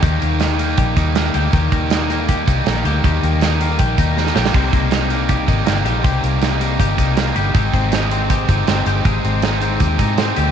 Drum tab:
CC |----------------|----------------|----------------|x---------------|
HH |x-x-x-x-x-x-x-x-|x-x-x-x-x-x-x-x-|x-x-x-x-x-x-----|--x-x-x-x-x-x-x-|
SD |----o-------o---|----o-------o---|----o-------oooo|----o-------o---|
BD |o-------o-o-----|o-o-----o-o-----|o-------o-o-----|o-o-----o-o-----|

CC |----------------|----------------|----------------|
HH |x-x-x-x-x-x-x-x-|x-x-x-x-x-x-x-x-|x-x-x-x-x-x-x-x-|
SD |----o-------o---|----o-------o---|----o-------o---|
BD |o-------o-o-----|o-o-----o-o-----|o-------o-o-----|